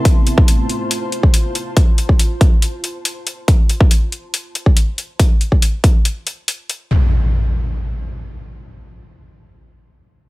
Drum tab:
HH |x-x-x-x-x-x-x-x-|x-x-x-x-x-x-x-x-|x-x-x-x-x-x-x-x-|x-x-x-x-x-x-x-x-|
BD |o--o-------o----|o--o--o---------|o--o-------o----|o--o--o---------|

HH |----------------|----------------|
BD |----------------|----------------|